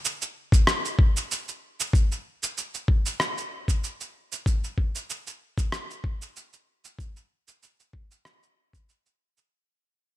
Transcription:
0, 0, Header, 1, 2, 480
1, 0, Start_track
1, 0, Tempo, 631579
1, 1468, Time_signature, 4, 2, 24, 8
1, 7725, End_track
2, 0, Start_track
2, 0, Title_t, "Drums"
2, 38, Note_on_c, 9, 69, 57
2, 114, Note_off_c, 9, 69, 0
2, 166, Note_on_c, 9, 69, 31
2, 242, Note_off_c, 9, 69, 0
2, 397, Note_on_c, 9, 36, 100
2, 405, Note_on_c, 9, 69, 61
2, 473, Note_off_c, 9, 36, 0
2, 481, Note_off_c, 9, 69, 0
2, 511, Note_on_c, 9, 37, 78
2, 517, Note_on_c, 9, 69, 54
2, 587, Note_off_c, 9, 37, 0
2, 593, Note_off_c, 9, 69, 0
2, 647, Note_on_c, 9, 69, 29
2, 723, Note_off_c, 9, 69, 0
2, 750, Note_on_c, 9, 36, 104
2, 826, Note_off_c, 9, 36, 0
2, 886, Note_on_c, 9, 69, 61
2, 962, Note_off_c, 9, 69, 0
2, 998, Note_on_c, 9, 69, 55
2, 1074, Note_off_c, 9, 69, 0
2, 1127, Note_on_c, 9, 69, 31
2, 1203, Note_off_c, 9, 69, 0
2, 1369, Note_on_c, 9, 69, 63
2, 1445, Note_off_c, 9, 69, 0
2, 1470, Note_on_c, 9, 36, 124
2, 1480, Note_on_c, 9, 69, 59
2, 1546, Note_off_c, 9, 36, 0
2, 1556, Note_off_c, 9, 69, 0
2, 1609, Note_on_c, 9, 69, 33
2, 1685, Note_off_c, 9, 69, 0
2, 1847, Note_on_c, 9, 69, 68
2, 1923, Note_off_c, 9, 69, 0
2, 1958, Note_on_c, 9, 69, 55
2, 2034, Note_off_c, 9, 69, 0
2, 2085, Note_on_c, 9, 69, 30
2, 2161, Note_off_c, 9, 69, 0
2, 2190, Note_on_c, 9, 36, 105
2, 2266, Note_off_c, 9, 36, 0
2, 2324, Note_on_c, 9, 69, 63
2, 2400, Note_off_c, 9, 69, 0
2, 2431, Note_on_c, 9, 37, 73
2, 2437, Note_on_c, 9, 69, 53
2, 2507, Note_off_c, 9, 37, 0
2, 2513, Note_off_c, 9, 69, 0
2, 2566, Note_on_c, 9, 69, 31
2, 2642, Note_off_c, 9, 69, 0
2, 2798, Note_on_c, 9, 36, 57
2, 2804, Note_on_c, 9, 69, 61
2, 2874, Note_off_c, 9, 36, 0
2, 2880, Note_off_c, 9, 69, 0
2, 2918, Note_on_c, 9, 69, 59
2, 2994, Note_off_c, 9, 69, 0
2, 3044, Note_on_c, 9, 69, 31
2, 3120, Note_off_c, 9, 69, 0
2, 3285, Note_on_c, 9, 69, 61
2, 3361, Note_off_c, 9, 69, 0
2, 3390, Note_on_c, 9, 36, 119
2, 3396, Note_on_c, 9, 69, 56
2, 3466, Note_off_c, 9, 36, 0
2, 3472, Note_off_c, 9, 69, 0
2, 3526, Note_on_c, 9, 69, 31
2, 3602, Note_off_c, 9, 69, 0
2, 3630, Note_on_c, 9, 36, 59
2, 3706, Note_off_c, 9, 36, 0
2, 3765, Note_on_c, 9, 69, 68
2, 3841, Note_off_c, 9, 69, 0
2, 3876, Note_on_c, 9, 69, 58
2, 3952, Note_off_c, 9, 69, 0
2, 4004, Note_on_c, 9, 69, 31
2, 4080, Note_off_c, 9, 69, 0
2, 4238, Note_on_c, 9, 36, 101
2, 4243, Note_on_c, 9, 69, 68
2, 4314, Note_off_c, 9, 36, 0
2, 4319, Note_off_c, 9, 69, 0
2, 4350, Note_on_c, 9, 37, 77
2, 4357, Note_on_c, 9, 69, 56
2, 4426, Note_off_c, 9, 37, 0
2, 4433, Note_off_c, 9, 69, 0
2, 4486, Note_on_c, 9, 69, 28
2, 4562, Note_off_c, 9, 69, 0
2, 4590, Note_on_c, 9, 36, 94
2, 4666, Note_off_c, 9, 36, 0
2, 4725, Note_on_c, 9, 69, 64
2, 4801, Note_off_c, 9, 69, 0
2, 4837, Note_on_c, 9, 69, 55
2, 4913, Note_off_c, 9, 69, 0
2, 4964, Note_on_c, 9, 69, 32
2, 5040, Note_off_c, 9, 69, 0
2, 5204, Note_on_c, 9, 69, 63
2, 5280, Note_off_c, 9, 69, 0
2, 5309, Note_on_c, 9, 36, 111
2, 5318, Note_on_c, 9, 69, 56
2, 5385, Note_off_c, 9, 36, 0
2, 5394, Note_off_c, 9, 69, 0
2, 5445, Note_on_c, 9, 69, 31
2, 5521, Note_off_c, 9, 69, 0
2, 5684, Note_on_c, 9, 69, 59
2, 5760, Note_off_c, 9, 69, 0
2, 5798, Note_on_c, 9, 69, 52
2, 5874, Note_off_c, 9, 69, 0
2, 5926, Note_on_c, 9, 69, 29
2, 6002, Note_off_c, 9, 69, 0
2, 6030, Note_on_c, 9, 36, 92
2, 6106, Note_off_c, 9, 36, 0
2, 6166, Note_on_c, 9, 69, 63
2, 6242, Note_off_c, 9, 69, 0
2, 6271, Note_on_c, 9, 37, 72
2, 6278, Note_on_c, 9, 69, 54
2, 6347, Note_off_c, 9, 37, 0
2, 6354, Note_off_c, 9, 69, 0
2, 6407, Note_on_c, 9, 69, 29
2, 6483, Note_off_c, 9, 69, 0
2, 6638, Note_on_c, 9, 36, 55
2, 6644, Note_on_c, 9, 69, 55
2, 6714, Note_off_c, 9, 36, 0
2, 6720, Note_off_c, 9, 69, 0
2, 6758, Note_on_c, 9, 69, 52
2, 6834, Note_off_c, 9, 69, 0
2, 6886, Note_on_c, 9, 69, 33
2, 6962, Note_off_c, 9, 69, 0
2, 7125, Note_on_c, 9, 69, 59
2, 7201, Note_off_c, 9, 69, 0
2, 7725, End_track
0, 0, End_of_file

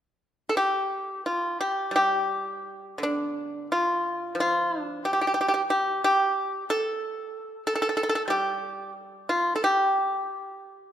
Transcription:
0, 0, Header, 1, 2, 480
1, 0, Start_track
1, 0, Tempo, 665927
1, 651, Tempo, 696864
1, 1125, Time_signature, 4, 2, 24, 8
1, 2571, Tempo, 675676
1, 3531, Tempo, 652174
1, 6411, Tempo, 669643
1, 7821, End_track
2, 0, Start_track
2, 0, Title_t, "Pipa"
2, 0, Program_c, 0, 105
2, 356, Note_on_c, 0, 69, 55
2, 406, Note_off_c, 0, 69, 0
2, 411, Note_on_c, 0, 67, 65
2, 861, Note_off_c, 0, 67, 0
2, 897, Note_on_c, 0, 65, 47
2, 1113, Note_off_c, 0, 65, 0
2, 1135, Note_on_c, 0, 67, 61
2, 1346, Note_on_c, 0, 55, 39
2, 1354, Note_off_c, 0, 67, 0
2, 1377, Note_on_c, 0, 67, 67
2, 2074, Note_off_c, 0, 67, 0
2, 2083, Note_on_c, 0, 50, 40
2, 2117, Note_on_c, 0, 62, 58
2, 2554, Note_off_c, 0, 62, 0
2, 2591, Note_on_c, 0, 65, 55
2, 2803, Note_off_c, 0, 55, 0
2, 3035, Note_off_c, 0, 65, 0
2, 3039, Note_on_c, 0, 53, 39
2, 3077, Note_on_c, 0, 65, 67
2, 3368, Note_off_c, 0, 65, 0
2, 3368, Note_on_c, 0, 62, 67
2, 3515, Note_off_c, 0, 62, 0
2, 3525, Note_off_c, 0, 50, 0
2, 3538, Note_on_c, 0, 67, 59
2, 3585, Note_off_c, 0, 67, 0
2, 3596, Note_on_c, 0, 67, 46
2, 3641, Note_off_c, 0, 67, 0
2, 3658, Note_on_c, 0, 67, 50
2, 3692, Note_off_c, 0, 67, 0
2, 3701, Note_on_c, 0, 67, 44
2, 3742, Note_off_c, 0, 67, 0
2, 3751, Note_on_c, 0, 67, 56
2, 3791, Note_off_c, 0, 67, 0
2, 3800, Note_on_c, 0, 67, 51
2, 3848, Note_off_c, 0, 67, 0
2, 3857, Note_on_c, 0, 67, 58
2, 3887, Note_off_c, 0, 67, 0
2, 3896, Note_on_c, 0, 67, 46
2, 3950, Note_off_c, 0, 67, 0
2, 4017, Note_on_c, 0, 67, 63
2, 4243, Note_off_c, 0, 67, 0
2, 4268, Note_on_c, 0, 67, 66
2, 4492, Note_off_c, 0, 53, 0
2, 4708, Note_off_c, 0, 67, 0
2, 4752, Note_on_c, 0, 69, 81
2, 5434, Note_off_c, 0, 69, 0
2, 5465, Note_on_c, 0, 69, 71
2, 5507, Note_off_c, 0, 69, 0
2, 5528, Note_on_c, 0, 69, 54
2, 5565, Note_off_c, 0, 69, 0
2, 5575, Note_on_c, 0, 69, 60
2, 5614, Note_off_c, 0, 69, 0
2, 5628, Note_on_c, 0, 69, 54
2, 5666, Note_off_c, 0, 69, 0
2, 5685, Note_on_c, 0, 69, 59
2, 5721, Note_off_c, 0, 69, 0
2, 5732, Note_on_c, 0, 69, 58
2, 5769, Note_off_c, 0, 69, 0
2, 5778, Note_on_c, 0, 69, 61
2, 5812, Note_off_c, 0, 69, 0
2, 5820, Note_on_c, 0, 69, 56
2, 5866, Note_off_c, 0, 69, 0
2, 5912, Note_on_c, 0, 55, 47
2, 5930, Note_on_c, 0, 67, 64
2, 6384, Note_off_c, 0, 67, 0
2, 6653, Note_on_c, 0, 65, 63
2, 6828, Note_off_c, 0, 65, 0
2, 6841, Note_on_c, 0, 69, 57
2, 6889, Note_off_c, 0, 69, 0
2, 6901, Note_on_c, 0, 67, 75
2, 7358, Note_off_c, 0, 55, 0
2, 7821, Note_off_c, 0, 67, 0
2, 7821, End_track
0, 0, End_of_file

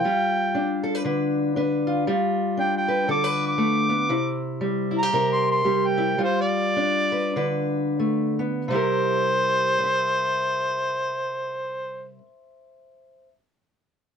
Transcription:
0, 0, Header, 1, 3, 480
1, 0, Start_track
1, 0, Tempo, 510204
1, 29, Time_signature, 4, 2, 24, 8
1, 4829, Tempo, 549451
1, 6269, Tempo, 612870
1, 7229, Tempo, 669643
1, 7709, Tempo, 692841
1, 11513, End_track
2, 0, Start_track
2, 0, Title_t, "Harmonica"
2, 0, Program_c, 0, 22
2, 0, Note_on_c, 0, 79, 96
2, 814, Note_off_c, 0, 79, 0
2, 2441, Note_on_c, 0, 79, 97
2, 2587, Note_off_c, 0, 79, 0
2, 2609, Note_on_c, 0, 79, 91
2, 2906, Note_off_c, 0, 79, 0
2, 2927, Note_on_c, 0, 86, 100
2, 3224, Note_off_c, 0, 86, 0
2, 3262, Note_on_c, 0, 86, 107
2, 4172, Note_off_c, 0, 86, 0
2, 4685, Note_on_c, 0, 82, 92
2, 4982, Note_off_c, 0, 82, 0
2, 4992, Note_on_c, 0, 84, 94
2, 5137, Note_off_c, 0, 84, 0
2, 5156, Note_on_c, 0, 84, 89
2, 5467, Note_on_c, 0, 79, 87
2, 5480, Note_off_c, 0, 84, 0
2, 5770, Note_off_c, 0, 79, 0
2, 5791, Note_on_c, 0, 72, 90
2, 5940, Note_off_c, 0, 72, 0
2, 5945, Note_on_c, 0, 74, 111
2, 6874, Note_off_c, 0, 74, 0
2, 7718, Note_on_c, 0, 72, 120
2, 10104, Note_off_c, 0, 72, 0
2, 11513, End_track
3, 0, Start_track
3, 0, Title_t, "Steel-string acoustic guitar"
3, 0, Program_c, 1, 25
3, 41, Note_on_c, 1, 55, 68
3, 48, Note_on_c, 1, 65, 59
3, 514, Note_on_c, 1, 62, 67
3, 785, Note_on_c, 1, 69, 71
3, 891, Note_off_c, 1, 69, 0
3, 891, Note_on_c, 1, 71, 57
3, 981, Note_off_c, 1, 71, 0
3, 984, Note_on_c, 1, 50, 67
3, 992, Note_on_c, 1, 71, 67
3, 1457, Note_off_c, 1, 62, 0
3, 1465, Note_off_c, 1, 71, 0
3, 1469, Note_on_c, 1, 62, 60
3, 1476, Note_on_c, 1, 71, 62
3, 1747, Note_off_c, 1, 65, 0
3, 1758, Note_on_c, 1, 65, 62
3, 1923, Note_off_c, 1, 62, 0
3, 1924, Note_off_c, 1, 65, 0
3, 1927, Note_off_c, 1, 71, 0
3, 1943, Note_off_c, 1, 50, 0
3, 1946, Note_off_c, 1, 55, 0
3, 1950, Note_on_c, 1, 55, 75
3, 1953, Note_on_c, 1, 65, 59
3, 2421, Note_on_c, 1, 62, 64
3, 2713, Note_on_c, 1, 71, 68
3, 2897, Note_on_c, 1, 50, 66
3, 2901, Note_off_c, 1, 71, 0
3, 2905, Note_on_c, 1, 69, 76
3, 3047, Note_off_c, 1, 69, 0
3, 3047, Note_on_c, 1, 71, 63
3, 3363, Note_off_c, 1, 55, 0
3, 3367, Note_on_c, 1, 57, 64
3, 3658, Note_off_c, 1, 57, 0
3, 3662, Note_on_c, 1, 59, 64
3, 3835, Note_off_c, 1, 62, 0
3, 3840, Note_off_c, 1, 65, 0
3, 3850, Note_on_c, 1, 48, 73
3, 3855, Note_on_c, 1, 64, 63
3, 3856, Note_off_c, 1, 59, 0
3, 3858, Note_off_c, 1, 50, 0
3, 3860, Note_off_c, 1, 71, 0
3, 4335, Note_on_c, 1, 55, 67
3, 4608, Note_off_c, 1, 64, 0
3, 4620, Note_on_c, 1, 64, 59
3, 4729, Note_off_c, 1, 64, 0
3, 4729, Note_on_c, 1, 67, 52
3, 4814, Note_off_c, 1, 48, 0
3, 4825, Note_on_c, 1, 48, 68
3, 4833, Note_on_c, 1, 70, 74
3, 5270, Note_off_c, 1, 67, 0
3, 5273, Note_off_c, 1, 55, 0
3, 5276, Note_on_c, 1, 55, 66
3, 5283, Note_on_c, 1, 67, 60
3, 5566, Note_on_c, 1, 64, 60
3, 5742, Note_off_c, 1, 55, 0
3, 5742, Note_off_c, 1, 64, 0
3, 5746, Note_off_c, 1, 48, 0
3, 5746, Note_on_c, 1, 55, 69
3, 5747, Note_off_c, 1, 67, 0
3, 5750, Note_off_c, 1, 70, 0
3, 5750, Note_on_c, 1, 65, 60
3, 6254, Note_on_c, 1, 62, 62
3, 6534, Note_on_c, 1, 71, 69
3, 6717, Note_off_c, 1, 71, 0
3, 6722, Note_on_c, 1, 50, 71
3, 6727, Note_on_c, 1, 71, 72
3, 7216, Note_off_c, 1, 55, 0
3, 7219, Note_on_c, 1, 57, 60
3, 7501, Note_off_c, 1, 57, 0
3, 7504, Note_on_c, 1, 59, 62
3, 7677, Note_off_c, 1, 65, 0
3, 7679, Note_off_c, 1, 62, 0
3, 7681, Note_off_c, 1, 71, 0
3, 7703, Note_off_c, 1, 50, 0
3, 7705, Note_off_c, 1, 59, 0
3, 7711, Note_on_c, 1, 48, 62
3, 7729, Note_on_c, 1, 55, 59
3, 7739, Note_on_c, 1, 64, 58
3, 7755, Note_on_c, 1, 67, 57
3, 7764, Note_on_c, 1, 70, 52
3, 8472, Note_off_c, 1, 64, 0
3, 8475, Note_on_c, 1, 72, 67
3, 8510, Note_off_c, 1, 67, 0
3, 8513, Note_on_c, 1, 76, 71
3, 10136, Note_off_c, 1, 48, 0
3, 10153, Note_off_c, 1, 55, 0
3, 10189, Note_off_c, 1, 70, 0
3, 10889, Note_off_c, 1, 72, 0
3, 10927, Note_off_c, 1, 76, 0
3, 11513, End_track
0, 0, End_of_file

